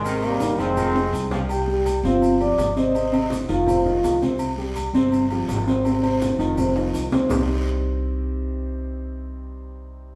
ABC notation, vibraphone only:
X:1
M:4/4
L:1/8
Q:1/4=165
K:Cm
V:1 name="Vibraphone"
z8 | [Gg]3 [Ff]2 [dd']2 [ee'] | [ee']2 z [Ff]4 z | z8 |
z8 | z8 | z8 |]